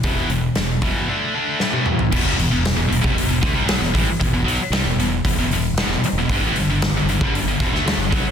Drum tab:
CC |----------------|x---------------|----------------|----------------|
HH |o-o-o-o---------|--o-o-o-o-o-o-o-|o-o-o-o-o-o-o-o-|o-o-o-o-o-o-o-o-|
SD |----o-------o---|----o-------oo--|----o-------oo--|----o------oo---|
T1 |-------------o--|----------------|----------------|----------------|
T2 |--------------o-|----------------|----------------|----------------|
FT |---------------o|----------------|----------------|----------------|
BD |o-----o---------|o------o--o---o-|o-------o-------|o------o--o---o-|